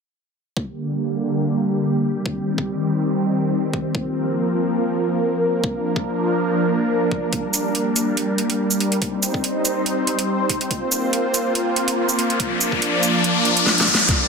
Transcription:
0.57 supersaw synth D3 G3 A#3 G4, kick
2.25 supersaw synth D#3 C4, kick
2.58 kick
3.74 kick
3.95 supersaw synth F3 A#3 A#4, kick
5.63 supersaw synth F3 D4, kick
5.96 kick
7.12 kick
7.33 supersaw synth G3, kick, closed hi-hat
7.54 closed hi-hat, shaker
7.75 closed hi-hat
7.96 closed hi-hat, shaker
8.17 closed hi-hat
8.38 closed hi-hat
8.50 closed hi-hat
8.71 shaker
8.80 closed hi-hat
8.92 closed hi-hat
9.02 supersaw synth C4 D#4 C5, kick, closed hi-hat
9.23 closed hi-hat, shaker
9.34 kick
9.44 closed hi-hat
9.65 closed hi-hat, shaker
9.86 closed hi-hat
10.07 closed hi-hat
10.19 closed hi-hat
10.49 kick, closed hi-hat
10.61 closed hi-hat
10.71 supersaw synth A#3 F4, kick, closed hi-hat, riser
10.92 closed hi-hat, shaker
11.13 closed hi-hat
11.34 closed hi-hat, shaker
11.55 closed hi-hat
11.76 closed hi-hat
11.88 closed hi-hat
12.09 shaker
12.19 closed hi-hat
12.30 closed hi-hat
12.40 supersaw synth F3 D4 D5, kick, closed hi-hat
12.61 closed hi-hat, shaker
12.72 kick
12.82 closed hi-hat
13.03 closed hi-hat, shaker
13.24 closed hi-hat
13.45 closed hi-hat
13.57 closed hi-hat
13.66 snare
13.78 snare, closed hi-hat
13.88 kick, closed hi-hat
13.95 snare
13.99 closed hi-hat
14.09 supersaw synth A#3 D4 G4 D5, kick, snare, closed hi-hat, riser

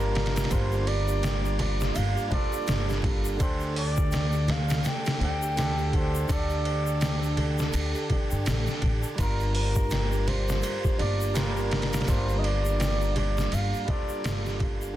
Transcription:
Already playing: upright bass G1, tine electric piano G3 A#3 D4 F4, string section G3 A#3 D4 F4, muted trumpet A#4
0.00 music box G4, shaker
0.14 music box G4, snare, ride
0.26 snare, ride
0.36 music box G4, snare, ride, shaker
0.44 snare, ride
0.50 upright bass G1, tine electric piano G3 D4 F4 A#4, music box G4, muted trumpet C5, kick, ride, shaker
0.72 music box G4, shaker
0.87 music box C5, muted trumpet D5, ride
1.08 music box G4, shaker
1.23 music box G5, snare, ride, shaker
1.44 music box G4, shaker
1.59 music box G4, muted trumpet D5, ride, low conga
1.80 music box G4, snare, shaker
1.94 upright bass G1, music box A4, muted trumpet F5, ride, shaker
2.16 music box G4, shaker
2.28 tine electric piano G3 D4, music box C5, kick, ride, low conga
2.32 tine electric piano F4 A4, muted trumpet D5
2.52 music box G4, shaker
2.67 upright bass G1, music box D4, snare, ride, shaker
2.89 music box G4, snare, shaker
3.02 music box G4, kick, ride, low conga
3.24 music box G4, shaker
3.37 upright bass D2, tine electric piano D3 D4, string section D3 G4 A4, music box G4, kick, ride, shaker
3.41 tine electric piano G4 A4, muted trumpet C5
3.60 music box G4, shaker
3.75 music box C5, muted trumpet D5, open hi-hat
3.97 music box G4, kick, shaker
4.12 music box G5, snare, ride, shaker
4.32 music box G4, shaker
4.48 music box G4, muted trumpet F5, snare, ride, low conga
4.69 music box G4, snare, ride, shaker
4.84 music box A4, muted trumpet G5, snare, ride, shaker
5.05 music box G4, snare, ride, shaker
5.19 upright bass D2, tine electric piano D3 D4 G4 A4, music box C5, ride
5.24 muted trumpet G5
5.42 music box G4, shaker
5.56 tine electric piano D3 D4 G4 A4, music box D4, snare, ride, shaker
5.78 music box G4, shaker
5.93 music box G4, muted trumpet C5, kick, ride
6.14 music box G4, shaker
6.28 upright bass D2, tine electric piano D3 D4 G4 A4, music box G4, kick, ride, shaker
6.32 muted trumpet D5
6.50 music box G4, shaker
6.65 music box C5, ride
6.87 music box G4, shaker
7.01 music box G5, snare, ride, shaker
7.23 music box G4, shaker
7.37 music box G4, ride, low conga
7.58 music box G4, snare, shaker
7.73 upright bass D2, ride, shaker
7.95 music box G4, shaker
8.09 music box G4, kick, ride, low conga
8.31 upright bass G2, music box G5, shaker
8.45 upright bass A1, music box A4, snare, ride, shaker
8.67 music box G4, snare, shaker
8.82 upright bass A1, music box D4, kick, ride, low conga
9.03 music box G4, shaker
9.16 upright bass G1, tine electric piano G3 D4, string section G3 A#3 F4, music box G4, kick, ride, shaker
9.20 tine electric piano F4 A#4, muted trumpet A#4
9.40 music box G4, shaker
9.55 muted trumpet A#4, music box C5, open hi-hat
9.75 music box G4, kick, shaker
9.90 music box G5, snare, ride, shaker
10.12 music box G4, shaker
10.27 music box G4, muted trumpet C5, ride, low conga
10.48 music box G4, snare, shaker
10.63 music box A4, ride, shaker
10.84 music box G4, kick, shaker
10.98 upright bass G1, tine electric piano G3 A#3 D4 F4, music box C5, muted trumpet D5, ride
11.20 music box G4, shaker
11.34 tine electric piano G3 A#3 D4 F4, music box D4, muted trumpet A#4, snare, ride, shaker
11.57 music box G4, shaker
11.71 music box G4, snare, ride
11.82 snare, ride
11.92 music box G4, snare, ride, shaker
12.01 snare, ride
12.07 upright bass G1, tine electric piano G3 D4 F4 A#4, music box G4, muted trumpet C5, kick, ride, shaker
12.28 music box G4, shaker
12.39 muted trumpet D#5
12.43 music box C5, muted trumpet D5, ride
12.64 music box G4, shaker
12.79 music box G5, snare, ride, shaker
13.01 music box G4, shaker
13.16 music box G4, muted trumpet D5, ride, low conga
13.37 music box G4, snare, shaker
13.52 upright bass G1, muted trumpet F5, ride, shaker
13.73 music box G4, shaker
13.86 tine electric piano G3 D4, music box C5, kick, ride, low conga
13.90 tine electric piano F4 A4, muted trumpet D5
14.09 music box G4, shaker
14.24 upright bass G1, music box D4, snare, ride, shaker
14.46 music box G4, snare, shaker
14.60 music box G4, kick, ride, low conga
14.82 music box G4, shaker
14.93 tine electric piano D3

